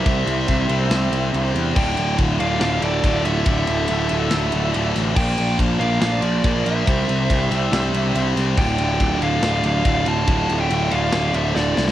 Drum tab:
CC |----------------|x---------------|----------------|x---------------|
RD |x-x-x-x-x-x-x-x-|--x-x-x-x-x-x-x-|x-x-x-x-x-x-x-x-|--x-x-x-x-x-x-x-|
SD |--------o-------|--------o-------|--------o-----o-|--------o-------|
BD |o---o-----------|o---o-------o---|o---------------|o---o-------o---|

CC |----------------|x---------------|----------------|
RD |x-x-x-x-x-x-x-x-|--x-x-x-x-x-x-x-|x-x-x-x-x-x-----|
SD |--------o-----o-|--------o-------|--------o---o-oo|
BD |o---o-----------|o---o-------o---|o---------------|